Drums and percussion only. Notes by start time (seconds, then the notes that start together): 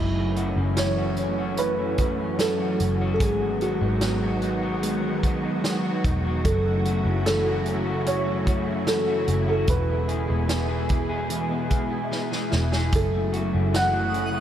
0.36 closed hi-hat
0.77 snare, closed hi-hat
1.17 closed hi-hat
1.57 closed hi-hat
1.98 kick, closed hi-hat
2.39 snare, closed hi-hat
2.80 closed hi-hat
3.20 kick, closed hi-hat
3.61 closed hi-hat
4.01 snare, closed hi-hat
4.42 closed hi-hat
4.83 closed hi-hat
5.23 kick, closed hi-hat
5.64 snare, closed hi-hat
6.04 kick, closed hi-hat
6.45 kick, closed hi-hat
6.85 closed hi-hat
7.26 snare, closed hi-hat
7.66 closed hi-hat
8.06 closed hi-hat
8.47 kick, closed hi-hat
8.87 snare, closed hi-hat
9.28 closed hi-hat
9.67 kick, closed hi-hat
10.09 closed hi-hat
10.49 snare, closed hi-hat
10.89 kick, closed hi-hat
11.30 closed hi-hat
11.70 kick, closed hi-hat
12.12 snare
12.32 snare
12.52 snare
12.72 snare
12.92 kick, closed hi-hat
13.33 closed hi-hat
13.74 snare, closed hi-hat
14.14 closed hi-hat